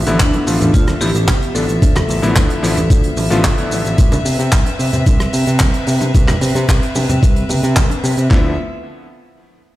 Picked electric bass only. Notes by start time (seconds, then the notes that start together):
0.07 A1
0.20 D2
0.47 A1
0.61 A1
0.74 D2
1.01 A1
1.15 A1
1.28 D2
1.55 A1
1.69 A1
1.82 D2
2.09 A1
2.23 A1
2.36 D2
2.63 A1
2.77 A1
2.90 D2
3.17 A1
3.31 A1
3.44 D2
3.71 A1
3.85 A1
3.98 C2
4.25 C3
4.39 C3
4.52 C2
4.79 C3
4.93 C3
5.06 C2
5.33 C3
5.47 C3
5.61 C2
5.87 C3
6.01 C3
6.15 C2
6.41 C3
6.55 C3
6.69 C2
6.95 C3
7.09 C3
7.23 C2
7.50 C3
7.63 C3
7.77 C2
8.04 C3
8.18 C3
8.31 D2